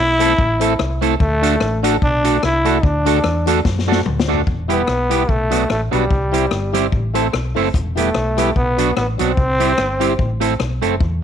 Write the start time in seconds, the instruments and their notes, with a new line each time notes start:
Already playing: trombone E4
0.00 fingered electric bass B1
0.19 clean electric guitar A3 C4 E4 A4, tonewheel organ C4 E4 A4, closed hi-hat
0.38 fingered electric bass A1, kick
0.60 clean electric guitar A3 C4 E4 A4, tonewheel organ C4 E4 A4, closed hi-hat
0.79 fingered electric bass C2, cross-stick
1.01 clean electric guitar A3 C4 E4 A4, tonewheel organ C4 E4 A4, closed hi-hat
1.20 fingered electric bass D2, trombone A3, kick
1.42 clean electric guitar A3 D4 F#4 A4, tonewheel organ D4 F#4 A4, closed hi-hat
1.60 fingered electric bass A1, cross-stick
1.83 clean electric guitar A3 D4 F#4 A4, tonewheel organ D4 F#4 A4, closed hi-hat
2.02 fingered electric bass B1, trombone D4, kick
2.24 clean electric guitar A3 D4 F#4 A4, tonewheel organ D4 F#4 A4, closed hi-hat
2.43 fingered electric bass C2, trombone E4, cross-stick
2.65 clean electric guitar A3 D4 F#4 A4, tonewheel organ D4 F#4 A4, closed hi-hat
2.83 fingered electric bass D2, trombone D4, kick
3.05 clean electric guitar A3 D4 F#4 A4, tonewheel organ D4 F#4 A4, closed hi-hat
3.24 fingered electric bass E2, cross-stick
3.46 clean electric guitar A3 D4 F#4 A4, tonewheel organ D4 F#4 A4, closed hi-hat
3.65 fingered electric bass F#2, kick, snare
3.79 snare
3.87 clean electric guitar A3 D4 F#4 A4, tonewheel organ D4 F#4 A4
3.92 snare
4.06 fingered electric bass D2, mid tom
4.20 snare
4.27 clean electric guitar A3 D4 F#4 A4, tonewheel organ D4 F#4 A4
4.33 floor tom
4.47 fingered electric bass E1, kick
4.68 clean electric guitar G3 B3 E4 G4, trombone B3, tonewheel organ E4 G4 B4, closed hi-hat
4.87 fingered electric bass B1, cross-stick
5.10 clean electric guitar G3 B3 E4 G4, tonewheel organ E4 G4 B4, closed hi-hat
5.29 fingered electric bass B1, trombone A3, kick
5.50 clean electric guitar F#3 B3 D4 F#4, tonewheel organ D4 F#4 B4, closed hi-hat
5.69 fingered electric bass A1, trombone A3, tonewheel organ F#4 B4, muted clean electric guitar stroke, cross-stick
5.91 fingered electric bass B1, clean electric guitar F#3 B3 D4 F#4, trombone G3, tonewheel organ D4 F#4 B4, closed hi-hat
6.11 fingered electric bass C2, kick
6.32 clean electric guitar G3 C4 E4 G4, tonewheel organ E4 G4 C5, closed hi-hat
6.51 fingered electric bass G1, cross-stick
6.73 clean electric guitar G3 C4 E4 G4, tonewheel organ E4 G4 C5, closed hi-hat
6.92 fingered electric bass A1, kick
7.14 clean electric guitar A3 C4 E4 A4, tonewheel organ E4 A4 C5, closed hi-hat
7.32 fingered electric bass B1, tonewheel organ A4 C5, muted clean electric guitar stroke, cross-stick
7.54 fingered electric bass F#1, clean electric guitar A3 C4 E4 A4, tonewheel organ E4 A4 C5, open hi-hat
7.74 fingered electric bass E1, kick, hi-hat pedal
7.95 clean electric guitar G3 B3 E4 G4, trombone A3, tonewheel organ E4 G4 B4, closed hi-hat
8.15 fingered electric bass B1, cross-stick
8.37 clean electric guitar G3 B3 E4 G4, tonewheel organ E4 G4 B4, cross-stick, closed hi-hat
8.56 fingered electric bass B1, trombone B3, kick
8.77 clean electric guitar F#3 B3 D4 F#4, tonewheel organ D4 F#4 B4, closed hi-hat
8.96 fingered electric bass A1, trombone B3, tonewheel organ F#4 B4, muted clean electric guitar stroke, cross-stick
9.18 fingered electric bass B1, clean electric guitar F#3 B3 D4 F#4, trombone C4, tonewheel organ D4 F#4 B4, closed hi-hat
9.37 fingered electric bass C2, kick
9.59 clean electric guitar G3 C4 E4 G4, tonewheel organ E4 G4 C5, closed hi-hat
9.78 fingered electric bass G1, cross-stick
10.00 clean electric guitar G3 C4 E4 G4, tonewheel organ E4 G4 C5, closed hi-hat
10.19 fingered electric bass A1, kick
10.40 clean electric guitar A3 C4 E4 A4, tonewheel organ E4 A4 C5, closed hi-hat
10.59 fingered electric bass B1, tonewheel organ A4 C5, muted clean electric guitar stroke, cross-stick
10.81 fingered electric bass F#1, clean electric guitar A3 C4 E4 A4, tonewheel organ E4 A4 C5, closed hi-hat
11.01 fingered electric bass E2, kick